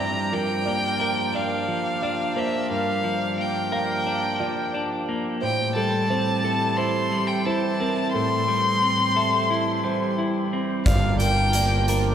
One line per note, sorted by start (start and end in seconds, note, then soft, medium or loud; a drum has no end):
0.00 1.69 G2 soft
0.00 5.37 F3 medium
0.00 0.32 G3 soft
0.00 5.38 A#3 soft
0.00 5.38 D4 soft
0.00 10.83 G4 medium
0.00 0.32 D5 medium
0.00 0.35 A#5 medium
0.32 1.67 F3 soft
0.32 0.66 A#4 medium
0.32 1.37 G5 medium
0.66 2.35 A#3 medium
0.66 1.00 D5 medium
1.00 2.70 A#4 soft
1.00 1.34 A#4 medium
1.34 2.02 D4 soft
1.34 2.01 D5 medium
1.34 2.40 F5 medium
1.68 3.03 F3 medium
2.02 3.73 D4 medium
2.02 2.36 D5 medium
2.36 3.37 A#3 medium
2.36 2.70 C5 medium
2.36 2.70 E5 medium
2.70 4.41 G2 soft
2.70 3.38 A#4 medium
2.70 3.43 F5 medium
3.04 4.39 F3 medium
3.38 5.07 A#3 soft
3.38 4.76 G5 medium
3.72 5.42 A#4 medium
3.72 4.40 F5 medium
4.06 4.73 D4 medium
4.40 5.42 F3 medium
4.40 5.08 D5 medium
4.74 5.42 D4 medium
5.09 5.43 A#3 medium
5.41 7.13 A2 soft
5.41 10.82 E3 medium
5.41 10.82 G3 soft
5.41 10.82 C4 medium
5.41 5.76 C5 medium
5.41 5.74 G5 medium
5.75 7.11 G3 medium
5.75 6.10 A4 medium
5.75 6.79 A5 medium
6.10 7.79 C4 soft
6.10 6.44 C5 medium
6.44 6.78 A4 medium
6.44 8.15 A4 soft
6.77 7.45 E4 soft
6.77 7.45 C5 medium
6.77 7.29 C6 medium
7.12 8.48 G3 medium
7.27 7.46 G5 medium
7.45 9.16 E4 medium
7.45 7.80 C5 medium
7.45 8.12 A5 medium
7.80 8.81 C4 medium
7.80 8.14 A#4 medium
8.12 9.85 A2 medium
8.12 8.82 A4 medium
8.12 10.14 C6 medium
8.48 9.83 G3 medium
8.82 10.52 C4 soft
9.16 10.87 A4 medium
9.16 9.84 E5 medium
9.50 10.17 E4 medium
9.84 11.20 G3 medium
9.84 10.53 C5 medium
10.18 10.87 E4 soft
10.53 10.87 C4 medium
10.86 12.15 G1 medium
10.86 12.15 G2 soft
10.86 12.15 F3 medium
10.86 12.15 A#3 medium
10.86 12.15 D4 medium
10.86 12.15 G4 medium
10.86 11.21 D5 medium
10.86 11.18 F5 medium
10.86 kick medium
10.86 closed hi-hat medium
11.18 12.15 F3 medium
11.18 11.55 A#4 medium
11.18 11.84 G5 medium
11.18 closed hi-hat soft
11.53 12.15 A#3 medium
11.53 11.89 D5 medium
11.53 closed hi-hat medium
11.88 12.15 A#4 medium
11.88 closed hi-hat soft